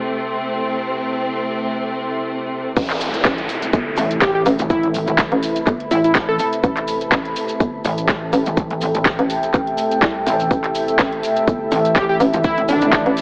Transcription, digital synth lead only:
4.22 4.30 G4 medium
4.35 4.42 G4 medium
4.70 4.88 E4 loud
5.91 6.00 E4 medium
6.04 6.11 E4 medium
6.29 6.36 A4 medium
6.40 6.48 A4 medium
11.96 12.04 G4 medium
12.09 12.16 G4 medium
12.44 12.62 E4 loud
12.69 13.17 D4 loud

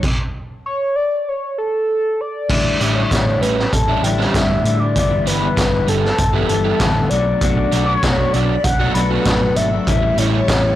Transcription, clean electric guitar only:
2.49 3.10 A2 medium
2.49 2.79 D3 medium
2.49 2.81 G3 medium
2.49 2.82 D4 medium
2.49 2.82 E4 medium
2.80 3.11 D3 medium
2.80 2.98 G3 medium
2.80 2.97 D4 medium
2.80 2.95 E4 medium
2.96 3.12 G3 medium
2.96 3.13 D4 medium
2.96 3.14 E4 medium
3.11 3.58 A2 medium
3.11 3.42 D3 medium
3.11 3.28 G3 medium
3.11 3.28 D4 medium
3.11 3.26 E4 medium
3.27 3.43 G3 soft
3.27 3.44 D4 medium
3.27 3.43 E4 medium
3.43 muted clean electric guitar stroke soft
3.89 4.04 G3 medium
3.89 4.05 D4 medium
3.89 4.05 E4 medium
4.04 4.34 D3 medium
4.04 4.34 G3 medium
4.04 4.36 D4 medium
4.04 4.35 E4 medium
4.34 4.81 A2 medium
4.34 4.64 D3 medium
4.34 4.50 G3 medium
4.34 4.50 D4 loud
4.34 4.48 E4 medium
4.49 4.65 G3 medium
4.49 4.66 D4 medium
4.49 4.66 E4 medium
4.65 4.94 D3 medium
4.65 4.81 G3 medium
4.65 4.81 D4 medium
4.65 4.79 E4 medium
4.80 4.95 G3 soft
4.80 4.98 D4 medium
4.80 4.94 E4 medium
4.96 5.57 G2 medium
4.96 5.57 D3 medium
4.96 5.27 E3 loud
4.96 5.27 G3 medium
4.96 5.29 B3 medium
4.96 5.29 E4 loud
5.28 5.43 E3 medium
5.28 5.43 G3 medium
5.28 5.43 B3 medium
5.28 5.41 E4 medium
5.42 5.58 E3 medium
5.42 5.58 G3 medium
5.42 5.60 B3 medium
5.42 5.59 E4 medium
5.58 6.04 G2 loud
5.58 6.04 D3 loud
5.58 5.76 E3 medium
5.58 5.75 G3 loud
5.58 5.75 B3 medium
5.58 5.73 E4 medium
5.74 5.88 E3 medium
5.74 5.89 G3 medium
5.74 5.90 B3 medium
5.74 5.89 E4 medium
5.90 muted clean electric guitar stroke medium
6.36 6.49 E3 medium
6.36 6.49 G3 medium
6.36 6.50 B3 medium
6.36 6.51 E4 medium
6.50 6.80 E3 medium
6.50 6.80 G3 medium
6.50 6.81 B3 medium
6.50 6.81 E4 medium
6.80 7.09 G2 medium
6.80 7.10 D3 loud
6.80 6.97 E3 medium
6.80 6.97 G3 medium
6.80 6.96 B3 loud
6.80 6.95 E4 loud
6.96 7.11 E3 medium
6.96 7.10 G3 medium
6.96 7.10 B3 medium
6.96 7.10 E4 medium
7.12 7.41 B2 medium
7.12 7.41 F#3 loud
7.12 7.29 A3 medium
7.12 7.27 D4 loud
7.12 7.26 F#4 loud
7.27 7.43 A3 medium
7.27 7.43 D4 medium
7.27 7.43 F#4 medium
7.42 8.02 B2 medium
7.42 7.72 F#3 medium
7.42 7.73 A3 medium
7.42 7.73 D4 loud
7.42 7.74 F#4 loud
7.73 8.03 F#3 medium
7.73 7.90 A3 medium
7.73 7.88 D4 medium
7.73 7.87 F#4 medium
7.88 8.04 A3 medium
7.88 8.03 D4 medium
7.88 8.04 F#4 medium
8.03 8.49 B2 medium
8.03 8.34 F#3 medium
8.03 8.20 A3 medium
8.03 8.19 D4 loud
8.03 8.18 F#4 loud
8.19 8.35 A3 medium
8.19 8.34 D4 medium
8.19 8.34 F#4 medium
8.35 muted clean electric guitar stroke soft
8.80 8.95 A3 soft
8.80 8.95 D4 medium
8.80 8.96 F#4 medium
8.95 9.26 F#3 medium
8.95 9.26 A3 medium
8.95 9.27 D4 medium
8.95 9.27 F#4 medium
9.26 9.72 B2 medium
9.26 9.56 F#3 medium
9.26 9.43 A3 medium
9.26 9.42 D4 loud
9.26 9.40 F#4 medium
9.42 9.57 A3 medium
9.42 9.57 D4 medium
9.42 9.58 F#4 medium
9.57 9.86 F#3 medium
9.57 9.73 A3 medium
9.57 9.72 D4 medium
9.57 9.71 F#4 medium
9.72 9.87 A3 medium
9.72 9.86 D4 medium
9.72 9.86 F#4 medium
9.88 10.48 A2 loud
9.88 10.17 E3 medium
9.88 10.18 G3 loud
9.88 10.18 C#4 medium
9.88 10.19 E4 loud
10.18 10.48 E3 medium
10.18 10.34 G3 medium
10.18 10.33 C#4 medium
10.18 10.32 E4 medium
10.33 10.49 G3 medium
10.33 10.49 C#4 medium
10.33 10.50 E4 medium
10.49 10.76 A2 medium
10.49 10.76 E3 medium
10.49 10.65 G3 medium
10.49 10.65 C#4 loud
10.49 10.64 E4 medium
10.65 10.76 G3 medium
10.65 10.76 C#4 medium
10.65 10.76 E4 medium

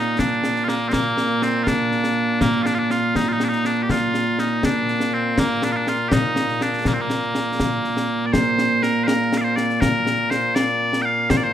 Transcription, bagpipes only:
0.00 11.53 A#2 medium
0.00 0.69 A#3 medium
0.00 0.19 D#4 medium
0.19 0.64 D4 medium
0.64 0.68 F4 medium
0.69 0.88 A#3 medium
0.88 0.93 C4 medium
0.93 1.43 A#3 medium
1.43 1.63 C4 medium
1.63 1.68 F4 loud
1.68 2.41 D4 loud
2.41 2.63 A#3 loud
2.63 2.75 D4 loud
2.63 2.66 F4 loud
2.74 2.91 D4 medium
2.74 2.78 F4 medium
2.91 3.16 F4 medium
3.16 3.28 D#4 loud
3.28 3.33 F4 medium
3.33 3.44 D#4 medium
3.44 3.49 D4 medium
3.49 3.66 D#4 medium
3.66 3.83 D4 medium
3.83 3.91 G4 medium
3.91 4.40 F4 loud
4.40 4.64 D#4 medium
4.64 5.13 D4 loud
5.13 5.39 C4 medium
5.39 5.64 A#3 loud
5.64 5.72 D4 loud
5.72 5.76 F4 medium
5.76 5.88 D4 medium
5.88 6.09 F4 medium
6.09 6.62 D#4 loud
6.09 6.13 G4 loud
6.62 6.87 D4 medium
6.87 6.94 A#3 medium
6.94 7.01 C4 medium
7.01 8.26 A#3 medium
8.26 8.33 D5 medium
8.33 8.83 C5 loud
8.83 9.04 A#4 medium
9.04 9.38 A#4 medium
9.04 9.07 C5 medium
9.38 9.44 D5 medium
9.38 9.41 F5 medium
9.44 9.56 C5 loud
9.56 9.81 D5 medium
9.81 10.30 A#4 loud
10.30 10.55 C5 medium
10.55 11.02 D5 loud
11.02 11.30 F5 loud
11.02 11.05 G5 loud
11.30 11.37 C5 loud
11.37 11.44 D5 medium
11.44 11.53 C5 loud

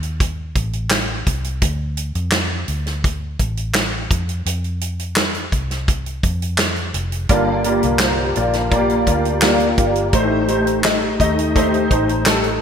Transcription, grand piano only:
7.29 8.32 G2 medium
7.29 8.32 D3 medium
7.29 7.56 A#3 medium
7.29 7.56 F4 medium
7.29 7.56 G4 medium
7.29 7.56 D5 loud
7.65 7.91 A#3 medium
7.65 7.92 F4 medium
7.65 7.92 G4 medium
7.65 7.92 D5 medium
8.01 8.27 A#3 medium
8.01 8.27 F4 medium
8.01 8.27 G4 medium
8.01 8.27 C5 medium
8.36 8.62 A#3 medium
8.36 8.63 F4 medium
8.36 8.63 G4 medium
8.36 8.63 D5 medium
8.71 8.97 A#3 loud
8.71 8.98 F4 medium
8.71 8.98 G4 medium
8.71 8.98 D5 medium
9.06 9.33 A#3 medium
9.06 9.33 F4 medium
9.06 9.33 G4 medium
9.06 9.33 D5 medium
9.41 9.68 A#3 medium
9.41 9.68 F4 medium
9.41 9.69 G4 medium
9.41 9.69 D5 medium
9.77 10.04 A#3 medium
9.77 10.04 F4 medium
9.77 10.04 G4 medium
9.77 10.04 D5 medium
10.13 11.16 A2 medium
10.13 10.40 A3 medium
10.13 10.40 D#4 medium
10.13 10.40 G4 medium
10.13 10.40 C5 loud
10.48 10.75 A3 medium
10.48 10.75 D#4 medium
10.48 10.75 G4 medium
10.48 10.75 C5 medium
10.84 11.10 A3 medium
10.84 11.11 D#4 medium
10.84 11.11 G4 medium
10.84 11.11 D#5 medium
11.20 11.46 A3 medium
11.20 11.46 D#4 medium
11.20 11.46 G4 medium
11.20 11.46 D#5 medium
11.55 11.82 A3 medium
11.55 11.82 D#4 medium
11.55 11.82 G4 medium
11.55 11.82 C5 medium
11.90 12.17 A3 medium
11.90 12.17 D#4 medium
11.90 12.17 G4 medium
11.90 12.17 C5 medium
12.26 12.52 A3 medium
12.26 12.52 D#4 medium
12.26 12.52 G4 medium
12.26 12.52 A4 medium

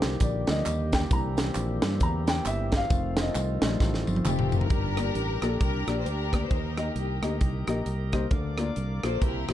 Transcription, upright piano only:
0.00 0.17 F3 medium
0.00 0.18 G3 soft
0.00 0.18 D4 medium
0.00 0.23 C5 medium
0.22 0.49 D5 medium
0.48 0.64 F3 soft
0.48 0.64 G3 soft
0.48 0.65 D4 medium
0.48 0.95 D#5 loud
0.94 0.99 G5 loud
1.11 2.87 E3 medium
1.11 2.87 A#3 medium
1.11 2.88 D4 medium
1.11 1.37 A#5 loud
2.03 2.27 A#5 loud
2.29 2.47 G5 loud
2.47 2.72 E5 loud
2.73 2.76 E5 medium
2.73 3.22 F5 loud
3.21 4.31 D#5 medium
3.63 4.23 G3 medium
3.63 4.23 A3 soft
3.63 4.23 D#4 medium
4.71 5.39 G2 medium
4.98 5.07 A#3 medium
4.98 5.07 D4 medium
4.98 5.07 G4 medium
4.98 5.07 D5 medium
5.43 5.52 A#3 medium
5.43 5.52 D4 medium
5.43 5.52 G4 medium
5.43 5.52 A4 medium
5.87 5.97 A#3 medium
5.87 5.97 D4 medium
5.87 5.97 G4 medium
5.87 5.97 D5 medium
6.32 6.42 A#3 medium
6.32 6.42 D4 medium
6.32 6.42 G4 medium
6.32 6.42 D5 medium
6.51 7.19 D#3 medium
6.78 6.87 A#3 medium
6.78 6.87 D#4 medium
6.78 6.87 G4 medium
6.78 6.87 D#5 medium
7.22 7.32 A#3 medium
7.22 7.32 D#4 medium
7.22 7.32 G4 medium
7.22 7.32 D#5 medium
7.68 7.77 A#3 medium
7.68 7.78 D#4 medium
7.68 7.78 G4 medium
7.68 7.78 D#5 medium
8.13 8.23 A#3 medium
8.13 8.23 D#4 medium
8.13 8.23 G4 medium
8.13 8.23 C5 medium
8.32 9.00 D3 medium
8.58 8.68 A#3 medium
8.58 8.68 D4 medium
8.58 8.68 F4 medium
8.58 8.68 D5 medium
9.04 9.13 A#3 medium
9.04 9.13 D4 medium
9.04 9.13 F4 medium
9.04 9.13 A4 medium
9.22 9.53 C3 medium
9.49 9.53 A#3 medium
9.49 9.53 E4 medium
9.49 9.53 G4 medium
9.49 9.53 C5 medium

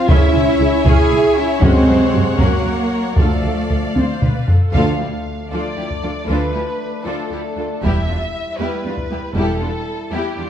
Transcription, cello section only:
0.09 0.86 E4 medium
0.86 1.36 G#4 medium
1.37 1.63 E4 medium
1.62 2.40 C4 medium
2.40 3.18 A#3 medium
3.18 3.96 A3 medium
4.74 4.99 D2 medium
5.00 5.08 D2 soft
5.52 5.60 D2 soft
5.77 5.85 D2 soft
6.03 6.11 D2 soft
6.29 6.37 D2 soft
6.54 6.62 D2 soft
7.05 7.13 D2 soft
7.31 7.39 D2 soft
7.57 7.65 D2 soft
7.83 7.91 E2 soft
8.08 8.16 E2 soft
8.60 8.68 E2 soft
8.85 8.93 E2 soft
9.11 9.19 E2 soft
9.36 9.44 E2 soft
9.61 9.69 E2 soft
10.11 10.19 E2 soft
10.37 10.45 E2 soft

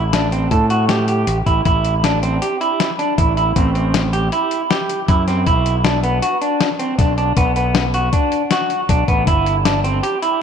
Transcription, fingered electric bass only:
0.00 0.47 A1 medium
0.51 1.24 A2 medium
1.27 1.45 A1 medium
1.46 1.64 A1 medium
1.65 2.38 A1 medium
3.18 3.53 A1 medium
3.56 4.28 A1 medium
5.08 5.43 F#2 medium
5.47 6.19 B1 loud
6.98 7.33 B1 medium
7.36 8.09 B1 medium
8.89 9.06 B1 medium
9.08 9.25 A1 medium
9.27 9.99 G1 medium

